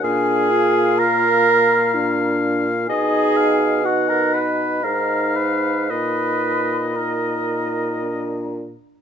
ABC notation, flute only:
X:1
M:3/4
L:1/16
Q:1/4=61
K:Bbphr
V:1 name="Flute"
a4 b6 z2 | a4 ^f b =b2 _b2 c'2 | c'4 b6 z2 |]